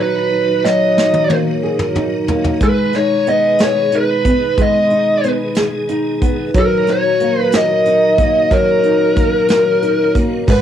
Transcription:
Already playing: A#2 D#3 F#3 D#4 F#4
0.00 D#4 B4
0.64 F#3 D#5, snare
0.97 D#4, snare
1.14 high tom
1.30 A#3, high tom
1.63 G#4
1.79 A#4, mid tom
1.95 D#4, mid tom
2.28 A#3, floor tom
2.44 floor tom
2.60 B2 G#3 G#4 B4, kick, closed hi-hat
2.93 D#4 C#5, snare, closed hi-hat
3.26 B3 D#5, closed hi-hat
3.58 G#4, snare, closed hi-hat
3.63 C#5
3.92 D#4 B4, closed hi-hat
4.25 B3, kick, closed hi-hat
4.58 G#3, kick, closed hi-hat
4.62 D#5
4.90 D#4, closed hi-hat
5.23 B3, closed hi-hat
5.55 G#4, snare, closed hi-hat
5.89 D#4, closed hi-hat
6.22 B3, kick, closed hi-hat
6.54 A#2 D#3 F#3 D#4 F#4, kick, closed hi-hat
6.59 A#4
6.87 D#4 C#5, snare, closed hi-hat
7.20 A#3, closed hi-hat
7.40 B4
7.52 A#4, snare, closed hi-hat
7.56 D#5
7.85 D#4, closed hi-hat
8.18 A#3, kick, closed hi-hat
8.51 F#3 C#4 A#4, kick, closed hi-hat
8.83 D#4, closed hi-hat
9.16 A#3, kick, closed hi-hat
9.48 A#4, snare, closed hi-hat
9.82 D#4, closed hi-hat
10.15 A#3, kick, closed hi-hat
10.47 G#1 G#2 B2 D#3 F#3 D#4 F#4 B4, kick, crash

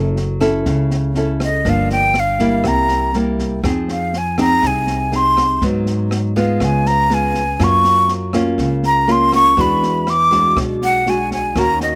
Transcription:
Already playing: F#1 F#3 C#4 E4 A4
0.16 snare
0.40 C#4 E4 A4, kick, cross-stick, snare
0.65 C#2 C#3, kick, snare
0.91 snare
1.15 C#4 E4 A4, snare
1.40 D#5, kick, cross-stick, snare
1.65 G1 G2 F3 A#3 D4, kick, snare
1.69 F5
1.90 G5, snare
2.14 cross-stick, snare
2.19 F5
2.39 G3 A#3 E4, kick, snare
2.64 C2 C3 A#5, kick, cross-stick, snare
2.88 snare
3.13 G3 A#3 E4, snare
3.39 kick, snare
3.63 F2 F3 C4 D#4 G#4, kick, cross-stick, snare
3.88 F5, snare
4.13 snare
4.18 G#5
4.38 C4 D#4 G#4 A#5, kick, cross-stick, snare
4.62 C2 C3, kick, snare
4.67 G#5
4.87 snare
5.12 C4 D#4 G#4 C6, snare
5.37 kick, cross-stick, snare
5.62 G#2 F#3 B3 D#4, kick, snare
5.86 snare
6.11 cross-stick, snare
6.36 G#3 B3 F4 F5, kick, snare
6.60 C#2 C#3 G#5, kick, cross-stick, snare
6.86 A#5, snare
7.10 G#3 B3 F4, snare
7.14 G#5
7.34 kick, snare
7.59 F#2 F#3 A#3 C#4 F4, kick, cross-stick, snare
7.64 C#6
7.84 snare
8.08 snare
8.33 A#3 C#4 F4, kick, cross-stick, snare
8.58 C#2 C#3, kick, snare
8.83 A#5, snare
9.08 A#3 C#4 F4 C6, snare
9.32 C#6, kick, cross-stick, snare
9.57 E2 E3 G#3 D4 F#4, kick, snare
9.61 B5
9.83 snare
10.07 D6, cross-stick, snare
10.31 G#3 D4 F#4, kick, snare
10.56 B1 B2, kick, cross-stick, snare
10.82 F#5, snare
11.06 G#3 D4 F#4 G#5, snare
11.31 G#5, kick, snare
11.53 D#2 D#3 D#4 A#4 C#5, kick, cross-stick, snare
11.57 A#3 C#4 F#4 F#5 A#5
11.80 D#5, snare

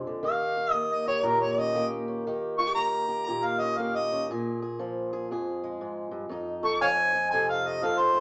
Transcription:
Already playing: F2 F3 G#3 D4 G#4
0.07 D3
0.23 D#3 G4 F5
0.57 G4
0.71 A#3 D#5
0.94 D#5
1.07 G4 C#5
1.23 A#2 G4 A#4
1.42 C#5
1.58 C#4 D#5
1.75 A#3 G4
2.08 C#4
2.27 D#3 G4
2.58 F4 C#6
2.67 G4
2.75 A#3 A#5
3.08 G4
3.25 A#2 G4 A#5
3.43 F5
3.60 C#4 D#5
3.77 A#3 G4 F5
3.95 D#5
4.12 C#4
4.30 A#2 G#4
4.62 G#4
4.79 F3
5.13 G#4
5.31 F2 G#4
5.64 G#3
5.81 G#2
6.11 G2
6.29 F2 D#4
6.63 A4 C#6
6.81 F3 C#5 F5 G#5
7.14 D#4
7.31 C3 A4 G#5
7.49 F5
7.66 A3 D#5
7.83 F3 A4 F5
7.98 C5
8.14 A3

